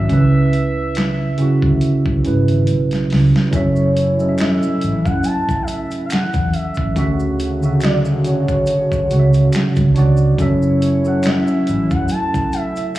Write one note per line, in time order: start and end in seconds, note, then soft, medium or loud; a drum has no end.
0.00 0.12 F#3 medium
0.00 0.10 C#4 medium
0.00 0.12 E4 medium
0.00 0.12 F#4 medium
0.00 2.64 E5 loud
0.08 1.35 C#2 medium
0.08 1.23 C#3 medium
0.08 1.23 C#4 medium
0.08 0.18 D#4 medium
0.08 kick loud
0.08 closed hi-hat medium
0.13 1.25 B4 medium
0.18 1.28 E4 medium
0.53 closed hi-hat medium
0.95 finger snap medium
0.95 snare loud
0.95 closed hi-hat medium
1.37 2.14 C#3 medium
1.37 2.14 C#4 medium
1.37 2.15 E4 medium
1.37 muted fingered electric bass stroke soft
1.37 closed hi-hat medium
1.42 2.16 F#4 medium
1.62 1.79 D2 medium
1.62 kick medium
1.81 closed hi-hat medium
2.06 2.22 C#2 medium
2.06 kick medium
2.23 2.45 G#2 medium
2.23 3.37 C#3 medium
2.23 3.38 C#4 medium
2.23 3.39 E4 medium
2.23 closed hi-hat medium
2.27 3.40 B4 medium
2.48 2.65 G#1 medium
2.48 closed hi-hat soft
2.67 3.04 B1 medium
2.67 closed hi-hat medium
2.91 snare medium
2.91 closed hi-hat soft
3.10 3.31 C#2 medium
3.10 snare medium
3.10 open hi-hat soft
3.36 snare medium
3.51 4.58 F#1 loud
3.51 4.09 F#3 medium
3.51 6.49 A3 medium
3.51 6.49 C#4 medium
3.51 4.10 C#4 medium
3.51 6.49 E4 medium
3.51 4.11 A4 medium
3.51 4.35 C#5 loud
3.51 kick loud
3.51 closed hi-hat medium
3.51 maracas soft
3.56 4.12 E5 loud
3.76 maracas soft
3.97 closed hi-hat medium
3.97 maracas soft
4.17 5.66 F#3 medium
4.17 5.67 C#4 medium
4.17 5.68 A4 medium
4.17 maracas soft
4.22 4.27 D#5 medium
4.29 5.72 E5 medium
4.38 5.06 E5 loud
4.38 finger snap medium
4.38 closed hi-hat medium
4.38 maracas medium
4.40 finger snap medium
4.40 snare loud
4.63 maracas soft
4.81 5.02 A1 medium
4.81 closed hi-hat medium
4.81 maracas soft
5.05 5.22 F#2 medium
5.05 5.26 F#5 medium
5.05 kick medium
5.05 maracas soft
5.23 5.64 A5 loud
5.23 closed hi-hat medium
5.23 maracas medium
5.49 kick medium
5.49 maracas medium
5.62 5.69 D#5 medium
5.68 6.04 E5 loud
5.68 closed hi-hat medium
5.68 maracas soft
5.91 closed hi-hat soft
5.91 maracas medium
6.06 6.12 F5 medium
6.10 6.55 F#5 loud
6.10 finger snap medium
6.10 closed hi-hat medium
6.10 maracas medium
6.12 finger snap medium
6.12 muted fingered electric bass stroke soft
6.12 snare loud
6.33 6.51 E2 medium
6.33 kick loud
6.33 closed hi-hat soft
6.33 maracas soft
6.53 7.39 E5 loud
6.53 closed hi-hat medium
6.75 kick medium
6.75 maracas soft
6.79 6.94 A1 medium
6.95 8.44 D2 loud
6.95 9.92 C#3 medium
6.95 7.52 D3 medium
6.95 9.92 A3 medium
6.95 7.53 C#4 medium
6.95 9.92 F#4 medium
6.95 7.54 F#4 medium
6.95 kick loud
6.95 closed hi-hat medium
6.95 maracas medium
6.99 7.55 E5 loud
7.20 maracas soft
7.40 closed hi-hat medium
7.40 maracas soft
7.61 8.17 C#3 medium
7.61 8.16 D3 medium
7.61 8.18 F#4 medium
7.61 maracas soft
7.65 8.19 E5 medium
7.81 7.97 D5 loud
7.81 finger snap medium
7.81 closed hi-hat medium
7.81 maracas medium
7.84 finger snap medium
7.84 snare loud
8.05 maracas soft
8.23 8.99 D3 medium
8.23 9.00 C#4 medium
8.23 9.01 F#4 medium
8.23 9.92 C#5 loud
8.23 closed hi-hat medium
8.23 maracas soft
8.28 9.02 C#5 medium
8.48 kick medium
8.48 maracas soft
8.66 closed hi-hat medium
8.66 maracas medium
8.92 kick medium
8.92 maracas medium
9.08 9.85 C#3 medium
9.08 9.87 F#4 medium
9.08 9.12 C#5 medium
9.08 closed hi-hat medium
9.08 maracas soft
9.12 9.47 C#2 medium
9.12 9.19 C#5 medium
9.19 9.90 E5 medium
9.33 closed hi-hat soft
9.33 maracas medium
9.52 finger snap medium
9.52 closed hi-hat medium
9.52 maracas medium
9.55 finger snap medium
9.55 snare loud
9.76 9.93 C#2 medium
9.76 kick medium
9.76 closed hi-hat soft
9.76 maracas soft
9.94 10.33 C#2 medium
9.94 10.33 D4 medium
9.94 10.35 F#4 medium
9.94 10.34 C#5 medium
9.94 closed hi-hat medium
9.99 10.35 D5 loud
10.17 maracas medium
10.37 11.44 F#1 loud
10.37 10.95 F#3 medium
10.37 12.99 A3 medium
10.37 10.96 C#4 medium
10.37 12.99 C#4 medium
10.37 12.99 E4 medium
10.37 10.97 A4 medium
10.37 11.27 C#5 loud
10.37 kick loud
10.37 closed hi-hat medium
10.37 maracas medium
10.42 10.97 E5 loud
10.62 maracas soft
10.82 closed hi-hat medium
10.82 maracas soft
11.03 12.52 F#3 medium
11.03 12.52 C#4 medium
11.03 12.53 A4 medium
11.03 maracas soft
11.08 12.54 F#5 medium
11.23 finger snap medium
11.23 closed hi-hat medium
11.23 maracas medium
11.26 11.92 E5 medium
11.26 finger snap medium
11.26 snare loud
11.47 maracas soft
11.67 11.88 A1 medium
11.67 closed hi-hat medium
11.67 maracas soft
11.91 12.08 F#2 medium
11.91 12.10 F#5 medium
11.91 kick medium
11.91 maracas soft
12.08 12.55 A5 loud
12.08 closed hi-hat medium
12.08 maracas medium
12.34 kick medium
12.34 maracas medium
12.52 12.97 E5 loud
12.52 closed hi-hat medium
12.52 maracas soft
12.76 closed hi-hat soft
12.76 maracas medium
12.95 12.99 F#5 loud
12.95 finger snap medium
12.95 maracas medium